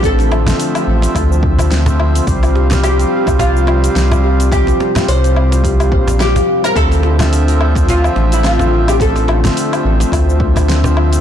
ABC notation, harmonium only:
X:1
M:4/4
L:1/16
Q:"Swing 16ths" 1/4=107
K:Dm
V:1 name="Harmonium"
[F,Ce]3 [F,Ce]8- [F,Ce]2 [F,Ce]3 | [G,CF]3 [G,CF]12- [G,CF] | [G,CF]3 [G,CF]8- [G,CF]2 z3 | [F,CE]3 [F,Ce]12- [F,Ce] |
[F,Ce]3 [F,Ce]8- [F,Ce]2 [F,Ce]3 |]